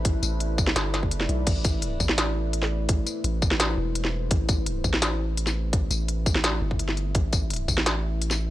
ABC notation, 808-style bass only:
X:1
M:4/4
L:1/8
Q:1/4=169
K:Am
V:1 name="808-style bass" clef=bass
A,,, A,,,3 G,,,3 B,,, | A,,,3 A,,,4- A,,,- | A,,, z A,,,3 E,,,3 | A,,,3 A,,,4- A,,,- |
A,,, A,,,4 G,,,3 | A,,,3 A,,,4- A,,, |]